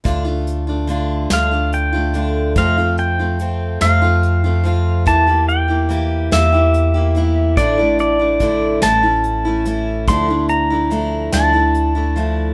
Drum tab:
HH |xxxxxx|xxxxxx|xxxxxx|xxxxxx|
SD |---o--|---o--|---o--|---o--|
BD |o-----|o-----|o-----|o-o---|

HH |xxxxxx|
SD |---o--|
BD |o-----|